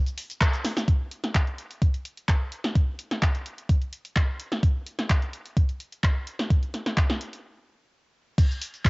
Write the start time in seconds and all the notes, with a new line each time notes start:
0.06 closed hi-hat, cabasa
0.18 open hi-hat
0.30 closed hi-hat, cabasa
0.41 kick, clap, closed hi-hat, cabasa
0.53 closed hi-hat, cabasa
0.65 snare, open hi-hat
0.77 snare, open hi-hat, cabasa
0.88 kick, closed hi-hat
1.11 closed hi-hat
1.24 snare, closed hi-hat
1.35 kick, clap, closed hi-hat
1.47 closed hi-hat
1.58 closed hi-hat
1.71 closed hi-hat
1.82 kick, closed hi-hat
1.94 closed hi-hat
2.05 closed hi-hat
2.17 closed hi-hat
2.29 kick, clap, closed hi-hat
2.52 closed hi-hat
2.64 snare, closed hi-hat
2.75 kick, closed hi-hat
2.99 closed hi-hat
3.11 snare, closed hi-hat
3.22 kick, clap, closed hi-hat
3.35 closed hi-hat
3.46 closed hi-hat
3.58 closed hi-hat
3.69 kick, closed hi-hat
3.82 closed hi-hat
3.93 closed hi-hat
4.05 closed hi-hat
4.16 kick, clap, closed hi-hat
4.40 closed hi-hat
4.52 snare, closed hi-hat
4.63 kick, closed hi-hat
4.86 closed hi-hat
4.99 snare, closed hi-hat
5.10 kick, clap, closed hi-hat
5.22 closed hi-hat
5.33 closed hi-hat
5.46 closed hi-hat
5.57 kick, closed hi-hat
5.69 closed hi-hat
5.80 closed hi-hat
5.92 closed hi-hat
6.04 kick, clap, closed hi-hat
6.27 closed hi-hat
6.39 snare, closed hi-hat
6.50 kick, closed hi-hat
6.63 closed hi-hat
6.74 snare, closed hi-hat
6.86 snare, closed hi-hat
6.97 kick, clap, closed hi-hat
7.10 snare, closed hi-hat
7.21 closed hi-hat
7.33 closed hi-hat
8.38 kick, closed hi-hat, crash, cabasa
8.51 cabasa
8.61 open hi-hat
8.74 closed hi-hat, cabasa
8.85 kick, clap, closed hi-hat, cabasa